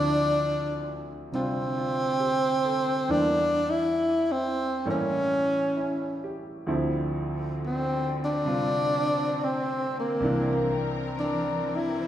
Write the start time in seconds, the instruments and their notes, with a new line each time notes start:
Already playing: grand piano D2 D3 F3 C4 E4, tenor saxophone D4
1.32 grand piano C3 G3 D4 F4, tenor saxophone C4
1.78 grand piano F4
2.20 grand piano G4
2.65 grand piano A4
3.08 grand piano E2 E3 G3 A#3 D4, tenor saxophone D4
3.70 tenor saxophone E4
4.32 tenor saxophone C4
4.85 grand piano A2 E3 G3 A#3 C#4
4.90 tenor saxophone C#4
5.77 grand piano E4
6.24 grand piano G4
6.67 grand piano D2 D3 F3 C4 E4, string section D3 C4
7.66 tenor saxophone C4
8.25 tenor saxophone D4
8.45 grand piano C3 G3 D4 F4
9.44 tenor saxophone C4
9.99 tenor saxophone A#3
10.20 grand piano C2 C3 E3, string section E3 A#4
10.25 grand piano A#3 D4
11.19 tenor saxophone D4
11.76 tenor saxophone E4
11.99 string section C5